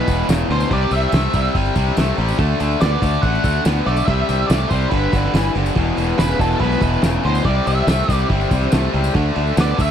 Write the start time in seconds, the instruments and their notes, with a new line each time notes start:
Already playing: lead electric guitar B4
0.07 fingered electric bass E1, overdriven electric guitar E2 B2, kick, open hi-hat, tambourine
0.19 tambourine
0.28 fingered electric bass E1, overdriven electric guitar E2 C#3, snare, open hi-hat, tambourine
0.50 fingered electric bass D2, overdriven electric guitar E2 B2, lead electric guitar C5, open hi-hat
0.60 tambourine
0.71 fingered electric bass C2, overdriven electric guitar C3 G3, lead electric guitar D5, kick, open hi-hat
0.91 fingered electric bass C2, overdriven electric guitar C3 G3, lead electric guitar E5, open hi-hat, tambourine
1.02 tambourine
1.12 fingered electric bass C2, overdriven electric guitar C3 A3, snare, open hi-hat, tambourine
1.33 fingered electric bass C2, overdriven electric guitar C3 G3, kick, open hi-hat, tambourine
1.44 tambourine
1.55 fingered electric bass G1, overdriven electric guitar C3 G3, kick, open hi-hat
1.65 tambourine
1.75 fingered electric bass C2, overdriven electric guitar C3 G3, kick, open hi-hat, tambourine
1.86 snare, tambourine
1.97 fingered electric bass C2, overdriven electric guitar C3 A3, snare, open hi-hat, tambourine
2.18 fingered electric bass A1, overdriven electric guitar C3 G3, open hi-hat
2.28 tambourine
2.39 fingered electric bass D2, overdriven electric guitar D3 A3, kick, open hi-hat
2.60 fingered electric bass D2, overdriven electric guitar D3 A3, open hi-hat, tambourine
2.71 tambourine
2.81 fingered electric bass D2, overdriven electric guitar D3 B3, lead electric guitar D5, snare, open hi-hat, tambourine
3.02 fingered electric bass D2, overdriven electric guitar D3 A3, kick, open hi-hat, tambourine
3.14 tambourine
3.22 fingered electric bass A1, overdriven electric guitar D3 A3, lead electric guitar F#5, kick, open hi-hat
3.35 tambourine
3.44 fingered electric bass D2, overdriven electric guitar D3 A3, kick, open hi-hat, tambourine
3.56 tambourine
3.65 fingered electric bass D2, overdriven electric guitar D3 B3, snare, open hi-hat, tambourine
3.86 fingered electric bass B1, overdriven electric guitar D3 A3, lead electric guitar D5, open hi-hat
3.97 tambourine
4.05 fingered electric bass C2, overdriven electric guitar C3 G3, lead electric guitar E5, kick, open hi-hat
4.29 fingered electric bass C2, overdriven electric guitar C3 G3, snare, open hi-hat, tambourine
4.47 fingered electric bass C2, overdriven electric guitar C3 A3, lead electric guitar D5, snare, open hi-hat, tambourine
4.60 tambourine
4.68 fingered electric bass C2, overdriven electric guitar C3, lead electric guitar C5, kick, open hi-hat, tambourine
4.72 overdriven electric guitar G3
4.82 tambourine
4.90 fingered electric bass G1, overdriven electric guitar G2 D3, lead electric guitar B4, kick, open hi-hat
5.13 fingered electric bass G1, overdriven electric guitar G2 D3, kick, open hi-hat, tambourine
5.24 snare
5.34 fingered electric bass G1, overdriven electric guitar G2 E3, snare, open hi-hat, tambourine
5.55 fingered electric bass F#1, overdriven electric guitar G2 D3, open hi-hat
5.66 tambourine
5.75 fingered electric bass E1, overdriven electric guitar E2 B2, tonewheel organ B3 E4 G4 B4, kick, open hi-hat
5.97 fingered electric bass E1, overdriven electric guitar E2 B2, open hi-hat, tambourine
6.09 tambourine
6.18 fingered electric bass E1, overdriven electric guitar E2 C#3, lead electric guitar B4, snare, open hi-hat, tambourine
6.39 fingered electric bass E1, overdriven electric guitar E2 B2, lead electric guitar A4, kick, open hi-hat, tambourine
6.52 tambourine
6.59 fingered electric bass B1, overdriven electric guitar E2 B2, lead electric guitar B4, kick, open hi-hat
6.72 tambourine
6.81 fingered electric bass E1, overdriven electric guitar E2 B2, kick, open hi-hat, tambourine
6.93 tambourine
7.02 fingered electric bass E1, overdriven electric guitar E2 C#3, snare, open hi-hat, tambourine
7.14 tambourine
7.24 fingered electric bass D2, overdriven electric guitar E2 B2, lead electric guitar C5, open hi-hat
7.35 tambourine
7.44 fingered electric bass C2, overdriven electric guitar C3 G3, tonewheel organ C4 E4, lead electric guitar D5, kick, open hi-hat
7.66 fingered electric bass C2, overdriven electric guitar C3 G3, lead electric guitar E5, open hi-hat, tambourine
7.77 tambourine
7.87 fingered electric bass C2, overdriven electric guitar C3 A3, snare, open hi-hat, tambourine
8.09 fingered electric bass C2, overdriven electric guitar C3 G3, lead electric guitar D5, kick, open hi-hat, tambourine
8.20 tambourine
8.30 fingered electric bass G1, overdriven electric guitar C3 G3, kick, open hi-hat
8.41 tambourine
8.51 fingered electric bass C2, overdriven electric guitar C3 G3, kick, open hi-hat, tambourine
8.61 snare, tambourine
8.72 fingered electric bass C2, overdriven electric guitar C3 A3, snare, open hi-hat, tambourine
8.83 tambourine
8.94 fingered electric bass C#2, overdriven electric guitar C3 G3, open hi-hat
9.04 tambourine
9.13 fingered electric bass D2, overdriven electric guitar D3 A3, tonewheel organ D4 F#4 A4 D5, kick, open hi-hat
9.36 fingered electric bass D2, overdriven electric guitar D3 A3, open hi-hat
9.47 tambourine
9.57 fingered electric bass D2, overdriven electric guitar D3 B3, lead electric guitar D5, snare, open hi-hat, tambourine
9.78 fingered electric bass D2, overdriven electric guitar D3 A3, lead electric guitar E5, kick, open hi-hat, tambourine